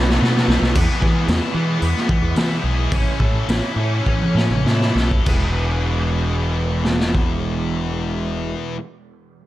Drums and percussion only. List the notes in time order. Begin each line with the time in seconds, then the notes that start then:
0.10 snare
0.24 snare
0.37 snare
0.50 snare
0.63 snare
0.75 kick, crash
1.02 kick
1.28 snare, open hi-hat
1.82 open hi-hat
1.97 snare
2.09 kick
2.36 snare, open hi-hat
2.91 kick, open hi-hat
3.20 kick
3.49 snare, open hi-hat
4.06 kick
4.22 high tom
4.37 snare
4.51 mid tom
4.67 snare
4.82 snare
4.97 snare
5.11 kick
5.26 kick, crash
6.85 snare
7.00 snare
7.15 kick